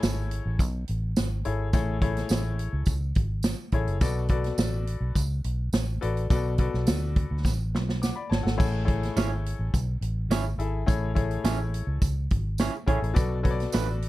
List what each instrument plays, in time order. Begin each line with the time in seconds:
Already playing: grand piano A2 E4 G#4 A4 C#5
0.02 fingered electric bass G#1, snare, closed hi-hat, tambourine
0.31 closed hi-hat
0.46 fingered electric bass A1
0.59 fingered electric bass B1, kick, closed hi-hat, tambourine
0.88 fingered electric bass A1, closed hi-hat
1.16 fingered electric bass G#1, snare, closed hi-hat, tambourine
1.45 fingered electric bass G#1, grand piano E4 G#4 A4 C#5, closed hi-hat
1.73 fingered electric bass A1, grand piano A2 E4 G#4 A4 C#5, kick, closed hi-hat, tambourine
2.01 grand piano E4 G#4 A4 C#5, kick, closed hi-hat
2.17 snare, closed hi-hat
2.29 fingered electric bass A1, snare, closed hi-hat, tambourine
2.59 closed hi-hat
2.73 fingered electric bass C#2
2.86 fingered electric bass C#2, kick, closed hi-hat, tambourine
3.15 fingered electric bass G#1, kick, closed hi-hat
3.43 snare, closed hi-hat, tambourine
3.72 fingered electric bass A1, grand piano E4 G#4 A4 C#5, kick, closed hi-hat
3.87 fingered electric bass F#1, closed hi-hat
4.01 fingered electric bass B1, grand piano B2 F#4 A4 B4 D5, kick, closed hi-hat, tambourine
4.28 grand piano F#4 A4 B4 D5, kick, closed hi-hat
4.44 snare, closed hi-hat
4.58 fingered electric bass A1, snare, closed hi-hat, tambourine
4.87 closed hi-hat
5.01 fingered electric bass B1
5.15 fingered electric bass C#2, kick, closed hi-hat, tambourine
5.44 fingered electric bass B1, closed hi-hat
5.73 fingered electric bass A1, snare, closed hi-hat, tambourine
6.01 fingered electric bass A1, grand piano F#4 A4 B4 D5, closed hi-hat
6.17 closed hi-hat
6.30 fingered electric bass B1, grand piano B2 F#4 A4 B4 D5, kick, closed hi-hat, tambourine
6.58 grand piano F#4 A4 B4 D5, kick, closed hi-hat
6.74 fingered electric bass B1, snare
6.87 fingered electric bass D2, snare, closed hi-hat, tambourine
7.16 kick, closed hi-hat
7.31 fingered electric bass D2
7.44 fingered electric bass A1, kick, snare, tambourine
7.75 fingered electric bass B1, snare
7.89 snare
8.02 grand piano F#5 D6, snare, tambourine
8.16 grand piano D5 B5
8.30 fingered electric bass G#1, grand piano C#5 A5, snare
8.43 fingered electric bass G#1, grand piano A4 F#5, snare
8.57 fingered electric bass A1, grand piano A2 E4 G#4 A4 C#5, kick, crash, tambourine
8.85 grand piano E4 G#4 A4 C#5, kick, closed hi-hat
9.03 snare, closed hi-hat
9.16 fingered electric bass G#1, clean electric guitar C#4 E4 G#4 C#5, snare, closed hi-hat, tambourine
9.46 closed hi-hat
9.59 fingered electric bass A1
9.74 fingered electric bass B1, kick, closed hi-hat, tambourine
10.01 fingered electric bass A1, closed hi-hat
10.29 fingered electric bass G#1, clean electric guitar C#4 E4 G#4 C#5, snare, closed hi-hat, tambourine
10.58 fingered electric bass G#1, grand piano E4 G#4 A4 E5, closed hi-hat
10.86 fingered electric bass A1, grand piano A2 E4 G#4 A4 C#5, kick, closed hi-hat, tambourine
11.14 grand piano E4 G#4 A4 C#5, kick, closed hi-hat
11.31 closed hi-hat
11.44 fingered electric bass A1, clean electric guitar C#4 E4 G#4 C#5, snare, closed hi-hat, tambourine
11.74 closed hi-hat
11.87 fingered electric bass C#2
12.02 fingered electric bass C#2, kick, closed hi-hat, tambourine
12.30 fingered electric bass G#1, kick, closed hi-hat
12.58 clean electric guitar C#4 E4 G#4 C#5, snare, closed hi-hat, tambourine
12.86 fingered electric bass A1, clean electric guitar C#4 E4 G#4 C#5, grand piano E4 G#4 A4 C#5, kick, closed hi-hat
13.02 fingered electric bass A1, closed hi-hat
13.14 fingered electric bass B1, grand piano B2 F#4 A4 B4 D5, kick, closed hi-hat, tambourine
13.43 grand piano F#4 A4 B4 C#5, kick, closed hi-hat
13.51 grand piano D5
13.60 snare, closed hi-hat
13.72 fingered electric bass A1, clean electric guitar A3 D4 F#4 B4, snare, closed hi-hat, tambourine
14.02 closed hi-hat